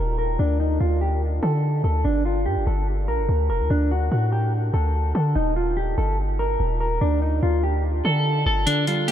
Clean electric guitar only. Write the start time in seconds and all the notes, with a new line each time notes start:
Already playing: A#4
0.18 A#4
0.39 D4
0.60 D#4
0.80 F4
1.01 G4
1.43 A4
1.84 A4
2.04 D4
2.25 F4
2.46 G4
2.67 A4
3.08 A#4
3.50 A#4
3.70 D4
3.91 F#4
4.11 F#4
4.32 G4
4.74 A4
5.15 A4
5.35 D#4
5.56 F4
5.77 G4
5.98 A4
6.39 A#4
6.80 A#4
7.01 D4
7.22 D#4
7.43 F4
7.63 G4
8.05 A4
8.47 A4
8.66 D4
8.88 F4
9.08 G4